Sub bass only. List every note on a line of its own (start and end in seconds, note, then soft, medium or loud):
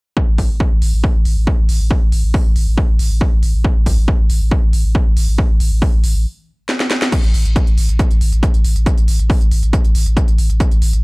0.28 0.38 A1 medium
0.38 0.49 A1 medium
0.50 0.60 A1 medium
0.72 0.81 A1 medium
0.82 0.93 A1 loud
0.93 1.03 A1 medium
1.15 1.25 A1 medium
1.25 1.36 A1 medium
1.37 1.47 A1 medium
1.58 1.68 A1 medium
1.69 1.80 A1 loud
1.80 1.90 A1 medium
2.02 2.12 A1 medium
2.12 2.23 A1 loud
2.24 2.34 A1 medium
2.45 2.55 A1 medium
2.56 2.67 A1 loud
2.67 2.77 A1 medium
2.89 2.99 A1 medium
2.99 3.10 A1 loud
3.11 3.21 A1 medium
3.32 3.42 A1 medium
3.43 3.53 A1 medium
3.54 3.64 A1 medium
3.76 3.86 A1 medium
3.86 3.97 A1 loud
3.98 4.08 A1 medium
4.19 4.29 A1 medium
4.30 4.40 A1 loud
4.41 4.51 A1 medium
4.63 4.73 A1 medium
4.73 4.84 A1 loud
4.85 4.95 A1 medium
5.06 5.16 A1 medium
5.17 5.27 A1 loud
5.28 5.38 A1 medium
5.50 5.60 A1 medium
5.60 5.71 A1 loud
5.71 5.82 A1 medium
5.93 6.03 A1 medium
6.04 6.14 A1 loud
6.15 6.25 A1 medium
7.24 7.33 A1 medium
7.34 7.45 A1 loud
7.45 7.56 A1 medium
7.67 7.77 A1 medium
7.78 7.88 A1 loud
7.89 7.99 A1 medium
8.11 8.20 A1 medium
8.21 8.32 A1 medium
8.32 8.43 A1 medium
8.54 8.64 A1 medium
8.64 8.75 A1 loud
8.76 8.86 A1 medium
8.98 9.07 A1 medium
9.08 9.19 A1 loud
9.19 9.30 A1 medium
9.41 9.51 A1 medium
9.51 9.62 A1 loud
9.63 9.73 A1 medium
9.85 9.94 A1 medium
9.95 10.06 A1 loud
10.06 10.16 A1 medium
10.28 10.38 A1 medium
10.38 10.49 A1 loud
10.50 10.60 A1 medium
10.71 10.81 A1 medium
10.82 10.93 A1 loud
10.93 11.03 A1 medium